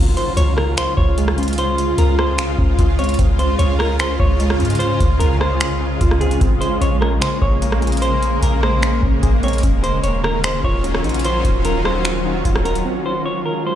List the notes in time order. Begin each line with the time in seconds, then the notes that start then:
Already playing: C#2 C#3 G#3 C4 F4
0.17 C5, closed hi-hat
0.37 C#2 C#5, closed hi-hat
0.57 A#4, cross-stick
0.77 C5, finger snap, closed hi-hat
0.97 C#2 F4 C#5, kick
1.18 G#3, closed hi-hat
1.28 cross-stick
1.38 C#4, closed hi-hat
1.43 closed hi-hat
1.48 closed hi-hat
1.53 closed hi-hat
1.58 C5, closed hi-hat
1.78 closed hi-hat
1.98 C#2 A#4, closed hi-hat
2.19 C5, cross-stick
2.38 finger snap, closed hi-hat
2.58 C#2 C#4, kick
2.79 C#2 F4, kick, closed hi-hat
2.99 C4 C#5, closed hi-hat
3.04 closed hi-hat
3.09 closed hi-hat
3.14 closed hi-hat
3.19 C#2 C4, kick, closed hi-hat
3.39 C5, closed hi-hat
3.59 C#2 C#5, closed hi-hat
3.79 A#4, cross-stick
3.99 C5, finger snap, closed hi-hat
4.19 C#2 F4 C#5, kick
4.40 G#3, closed hi-hat
4.50 cross-stick
4.59 G#2 C#4, closed hi-hat
4.65 closed hi-hat
4.70 closed hi-hat
4.75 closed hi-hat
4.79 C5, closed hi-hat
5.00 C#2, kick, closed hi-hat
5.19 C#2 A#4, closed hi-hat
5.41 C5, cross-stick
5.60 finger snap, closed hi-hat
5.81 C#4
6.01 C#2 F4, kick, closed hi-hat
6.11 cross-stick
6.21 C4 G#4, closed hi-hat
6.31 closed hi-hat
6.41 A#1 A#3 C4, kick, closed hi-hat
6.61 C5, closed hi-hat
6.81 A#1 C#5, closed hi-hat
7.01 A#4, cross-stick
7.21 C5, finger snap, closed hi-hat
7.41 A#1 G#4 C#5, kick
7.62 A#3, closed hi-hat
7.72 cross-stick
7.82 C#4, closed hi-hat
7.87 closed hi-hat
7.92 closed hi-hat
7.97 closed hi-hat
8.02 C5, closed hi-hat
8.23 closed hi-hat
8.42 A#1 A#4, closed hi-hat
8.63 C5, cross-stick
8.83 finger snap, closed hi-hat
9.03 A#1 C#4, kick
9.23 A#1 G#4, kick, closed hi-hat
9.43 C4 C#5, closed hi-hat
9.48 closed hi-hat
9.53 closed hi-hat
9.58 closed hi-hat
9.63 D#1 D#3 F#3 C#4 F4, kick, closed hi-hat
9.84 C5, closed hi-hat
10.03 D#1 C#5, closed hi-hat
10.24 A#4, cross-stick
10.44 C5, finger snap, closed hi-hat
10.64 D#1 F4 C#5, kick
10.84 C#4, closed hi-hat
10.95 cross-stick
11.04 A#1 D#4, closed hi-hat
11.09 closed hi-hat
11.14 closed hi-hat
11.19 closed hi-hat
11.25 C5, closed hi-hat
11.45 D#1, kick, closed hi-hat
11.65 D#1 A#4, closed hi-hat
11.85 C5, cross-stick
12.05 finger snap, closed hi-hat
12.25 D#4
12.45 D#1 F4, kick, closed hi-hat
12.56 cross-stick
12.65 C#4 A#4, closed hi-hat
12.75 closed hi-hat
12.85 C#3 G#3 C4 F4 G#4
13.06 C5
13.26 C#5
13.46 A#4
13.67 C5